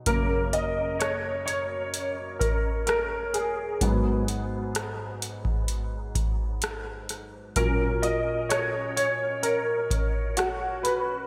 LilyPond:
<<
  \new Staff \with { instrumentName = "Grand piano" } { \time 4/4 \key fis \major \tempo 4 = 64 ais'8 dis''8 cis''8 cis''4 ais'8 ais'8 gis'8~ | gis'2.~ gis'8 r8 | ais'8 dis''8 cis''8 cis''8 ais'4 fis'8 b'8 | }
  \new Staff \with { instrumentName = "Grand piano" } { \clef bass \time 4/4 \key fis \major <fis, cis ais>8 r2. r8 | <gis, fis b>1 | <ais, fis cis'>1 | }
  \new DrumStaff \with { instrumentName = "Drums" } \drummode { \time 4/4 <hh bd>8 hh8 <hh ss>8 hh8 hh8 <hh bd>8 <hh ss>8 <hh ss>8 | <hh bd>8 hh8 <hh ss>8 hh16 bd16 hh8 <hh bd>8 <hh ss>8 <hh ss>8 | <hh bd>8 hh8 <hh ss>8 hh8 hh8 <hh bd>8 <hh ss>8 <hh ss>8 | }
>>